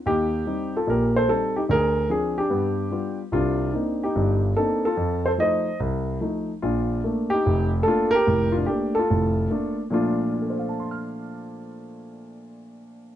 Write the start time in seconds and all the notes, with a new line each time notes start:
0.06 D#2 D#4 G4
0.46 G3 C4 D#4
0.77 F4 A4
0.87 A#1 A#2 G4 A#4
1.16 A4 C5
1.28 G3 C4 D#4 A4
1.56 D#4 G4
1.69 D2 D3 G#4 A#4
2.10 F3 C4 D4 G#4
2.38 D4 G4
2.50 G2 B3
2.92 G3 B3 F4
3.32 C2 C3 D4 F4
3.73 A#3 C4 D4 D#4
4.03 D#4 G4
4.15 G1 G2
4.56 A#3 C4 D4 D#4 A4
4.85 F4 A4
4.97 F2
5.26 A4 C5
5.38 F3 A3 D#4 D#5
5.42 C5
5.80 C2
6.21 F3 A3 D#4
6.62 A#1 D4 F4
7.04 A3 A#3 D4
7.30 D#4 G4
7.46 F1
7.83 A3 A#3 D4 A4
7.88 F4
8.11 A#4
8.15 G4
8.27 F1 A2
8.52 F4
8.57 D4
8.66 A3 A#3 D4 G4
8.95 A4
8.99 F4
9.10 F1 A2
9.51 A3 A#3 D4
9.90 A#2 F3 A3 D4 F4
10.34 F4
10.42 A4
10.50 C5
10.59 F5
10.69 A5
10.80 C6
10.91 F6